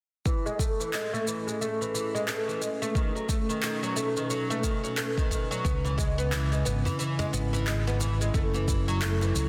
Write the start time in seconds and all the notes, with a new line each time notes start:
0.25 A2 E3, kick, shaker
0.46 G#3, shaker
0.57 A3 C#4, kick, shaker
0.80 E3, shaker
0.93 G#3, clap, shaker
1.00 G#4
1.13 A3, shaker
1.27 E3, shaker
1.47 G#3 B4, shaker
1.61 A3, shaker
1.81 E3, shaker
1.94 E3, shaker
2.15 G#3, shaker
2.28 A3, clap, shaker
2.48 E3, shaker
2.61 G#3, shaker
2.82 A3, shaker
2.95 B2 D#3, kick, shaker
3.15 F#3, shaker
3.29 A3, kick, shaker
3.49 D#3 D#4, shaker
3.63 D#3, clap, shaker
3.83 F#3, shaker
3.96 A3, shaker
4.17 D#3, shaker
4.30 F#3, shaker
4.50 A3, shaker
4.64 D#3, kick, shaker
4.84 F#3, shaker
4.97 A3, clap, shaker
5.17 D#3, kick, shaker
5.31 D#3, kick, shaker
5.51 F#3, shaker
5.64 C#2 C#3 B3, kick, shaker
5.85 E3, djembe slap, shaker
5.98 G#3, kick, shaker
6.18 B3, shaker
6.32 E3, clap, shaker
6.42 E4
6.52 G#3, djembe slap, shaker
6.65 G#1 B3, shaker
6.85 E3, djembe bass, shaker
6.99 E3, shaker
7.19 G#3, djembe bass, shaker
7.33 G#1 B3, shaker
7.53 E3, djembe tone, shaker
7.67 G#3, clap, shaker
7.87 B3, shaker
8.00 E3, djembe slap, djembe tone, shaker
8.21 G#3, shaker
8.34 F#1 F#3 A3, kick, shaker
8.54 E3, djembe slap, djembe tone, shaker
8.68 E3, kick, shaker
8.88 F#3, shaker
9.00 A3 G#4, clap, shaker
9.21 E3, djembe slap, shaker
9.35 C#2 F#3, shaker